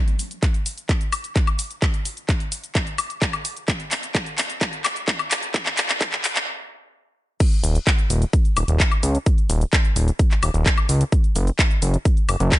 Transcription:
0.08 closed hi-hat, cabasa
0.19 open hi-hat, cabasa
0.31 closed hi-hat, cabasa
0.43 kick, clap, closed hi-hat, cabasa
0.54 closed hi-hat, cabasa
0.66 open hi-hat, cabasa
0.78 closed hi-hat, cabasa
0.89 kick, clap, closed hi-hat, cabasa
1.01 closed hi-hat, cabasa
1.12 open hi-hat, cabasa, high woodblock
1.24 closed hi-hat, cabasa
1.36 kick, clap, closed hi-hat, cabasa
1.47 closed hi-hat, cabasa, high woodblock
1.59 open hi-hat, cabasa
1.71 closed hi-hat, cabasa
1.82 kick, clap, closed hi-hat, cabasa
1.94 closed hi-hat, cabasa
2.05 open hi-hat, cabasa
2.17 closed hi-hat, cabasa
2.29 kick, clap, closed hi-hat, cabasa
2.40 closed hi-hat, cabasa
2.52 open hi-hat, cabasa
2.64 closed hi-hat, cabasa
2.75 kick, clap, closed hi-hat, cabasa
2.87 closed hi-hat, cabasa
2.98 open hi-hat, cabasa, high woodblock
3.10 closed hi-hat, cabasa
3.22 kick, clap, closed hi-hat, cabasa
3.33 closed hi-hat, cabasa, high woodblock
3.45 open hi-hat, cabasa
3.57 closed hi-hat, cabasa
3.68 kick, clap, closed hi-hat, cabasa
3.80 closed hi-hat, cabasa
3.91 clap, open hi-hat, cabasa
4.03 closed hi-hat, cabasa
4.15 kick, clap, closed hi-hat, cabasa
4.26 closed hi-hat, cabasa
4.38 clap, open hi-hat, cabasa
4.50 closed hi-hat, cabasa
4.61 kick, clap, closed hi-hat, cabasa
4.73 closed hi-hat, cabasa
4.85 clap, open hi-hat, cabasa, high woodblock
4.96 closed hi-hat, cabasa
5.08 kick, clap, closed hi-hat, cabasa
5.19 closed hi-hat, cabasa, high woodblock
5.31 clap, open hi-hat, cabasa
5.43 closed hi-hat, cabasa
5.54 kick, clap, closed hi-hat, cabasa
5.66 clap, closed hi-hat, cabasa
5.77 clap, open hi-hat, cabasa
5.89 clap, closed hi-hat, cabasa
6.01 kick, clap, closed hi-hat, cabasa
6.12 clap, closed hi-hat, cabasa
6.24 clap, open hi-hat, cabasa
6.36 clap, closed hi-hat, cabasa
7.40 kick, closed hi-hat, crash, cabasa
7.52 closed hi-hat, cabasa
7.64 D#1, open hi-hat, cabasa
7.75 closed hi-hat, cabasa
7.87 kick, clap, closed hi-hat, cabasa
7.99 closed hi-hat, cabasa
8.10 D#1, open hi-hat, cabasa
8.22 closed hi-hat, cabasa
8.33 kick, closed hi-hat, cabasa
8.45 closed hi-hat, cabasa
8.57 D#1, open hi-hat, cabasa, high woodblock
8.68 D#1, closed hi-hat, cabasa
8.80 kick, clap, closed hi-hat, cabasa
8.91 closed hi-hat, cabasa, high woodblock
9.03 C#2, open hi-hat, cabasa
9.15 closed hi-hat, cabasa
9.26 kick, closed hi-hat, cabasa
9.38 closed hi-hat, cabasa
9.50 D#1, open hi-hat, cabasa
9.61 closed hi-hat, cabasa
9.73 kick, clap, closed hi-hat, cabasa
9.85 closed hi-hat, cabasa
9.96 D#1, open hi-hat, cabasa
10.08 closed hi-hat, cabasa
10.19 kick, closed hi-hat, cabasa
10.31 clap, closed hi-hat, cabasa
10.43 D#1, open hi-hat, cabasa, high woodblock
10.54 D#1, closed hi-hat, cabasa
10.66 kick, clap, closed hi-hat, cabasa
10.78 closed hi-hat, cabasa, high woodblock
10.89 C#2, open hi-hat, cabasa
11.01 closed hi-hat, cabasa
11.12 kick, closed hi-hat, cabasa
11.24 closed hi-hat, cabasa
11.36 F#1, open hi-hat, cabasa
11.47 closed hi-hat, cabasa
11.59 kick, clap, closed hi-hat, cabasa
11.71 closed hi-hat, cabasa
11.82 F#1, open hi-hat, cabasa
11.94 closed hi-hat, cabasa
12.05 kick, closed hi-hat, cabasa
12.17 closed hi-hat, cabasa
12.29 F#1, open hi-hat, cabasa, high woodblock
12.40 F#1, closed hi-hat, cabasa
12.52 kick, clap, closed hi-hat, cabasa

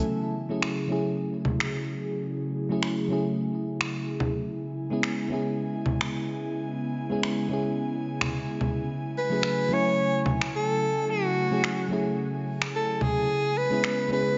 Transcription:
Already playing: F#3 A3 C#4 E4 A4
0.06 C#3 F#3 A3 E4 G#4
0.49 F#3 A3 C#4 E4 G#4
0.62 finger snap
0.87 F#3 A3 C#4 E4
0.92 G#4
1.45 low conga
1.60 finger snap
2.69 F#3 A3 C#4 E4 G#4
2.83 finger snap
3.08 F#3 A3 C#4 E4
3.13 G#4
3.81 finger snap
4.20 low conga
4.47 C#3 G#3 B3 G#5
4.90 G#3 B3 C#4 E4 G#4
5.03 finger snap
5.28 G#3 B3 C#4 E4
5.34 G#4
5.86 low conga
6.01 finger snap
7.10 G#3 B3 C#4 E4 G#4
7.23 finger snap
7.49 G#3 B3 C#4 E4
7.53 G#4
8.21 finger snap, low conga
8.61 low conga
8.89 F#3 A3
9.18 B4
9.30 F#3 A3 C#4 E4 G#4
9.43 finger snap
9.69 F#3 A3 C#4 E4
9.73 C#5 G#5
10.26 low conga
10.41 finger snap
10.56 A4
11.10 F#4
11.50 F#3 A3 C#4 E4 G#4
11.64 finger snap
11.88 F#3 A3 C#4 E4
11.93 G#4
12.62 finger snap
12.76 A4
13.01 G#4, low conga
13.28 G#3 B3 E4 G#4
13.58 B4
13.70 G#3 B3 C#4 E4 G#4
13.84 finger snap
14.08 G#3 B3 C#4 E4
14.13 G#4 B4

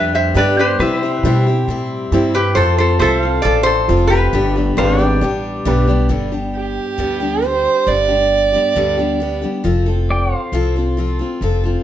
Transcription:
Already playing: F2 G3 B3 D4 G4 B4 E5
0.15 C5 E5
0.34 G2 D3 G3 B3 D4 G4 B4 D5
0.57 G3 B3 D4 G4 C5
0.79 C3 G3 C4 E4 G4 B4 E5
1.00 E4 G4 C5
1.06 C4
1.16 B4
1.23 B2 C3 G3 C4 E4 G4 C5
1.46 C4 E4 G4
1.68 A2 G3 C4 E4 G4
2.12 G2 C3 G3 C4 E4 G4 C5
2.34 C4 E4 G4 B4
2.55 F2 F3 C4 F4 A4 C5
2.78 C4 F4 A4 C5
2.99 C2 F3 C4 F4 A4 C5 E5
3.22 C4 F4 A4 F5
3.42 A1 F3 C4 F4 A4 D5
3.46 A4
3.63 A4 C5
3.88 F1 F3 C4 F4 A4 C5
4.07 G4 A4 B4
4.13 C4 F4
4.33 G1 G2 D3 G3 B3 D4 G4
4.55 G3 B3 D4 G4
4.77 G#1 G2 D3 G3 B3 D4 G4 B4 C5 F5
4.99 G3 B3 D4 G4
5.03 D5 G5
5.21 A1 G3 B3 D4 G4
5.65 B1 G2 D3 G3 B3 D4 G4 B4
5.87 G3 B3 D4 G4
6.09 G1 G2 D3 G3 B3 D4 G4
6.32 G3 B3 D4 G4
6.55 G4
6.98 D2 G2 D3 G3 B3 D4 G4
7.20 G3 B3 D4 G4
7.42 G3 D4 G4 C5
7.87 G1 G2 D3 G3 B3 D4 G4 D5
8.08 G3 B3 D4 G4
8.52 G3 B3 D4 G4
8.76 D2 G2 D3 G3 B3 D4 G4
8.97 G3 B3 D4 G4
9.20 G3 B3 D4 G4
9.42 G3 B3 D4 G4
9.64 F1 F3 C4 F4 A4
9.86 C4 F4 A4
10.10 D5 G5
10.35 C5 F5
10.52 C2 F3 C4 F4 A4
10.76 C4 F4 A4
10.97 F3 C4 F4 A4
11.19 C4 F4 A4
11.41 F1 F3 C4 F4 A4
11.64 C4 F4 A4

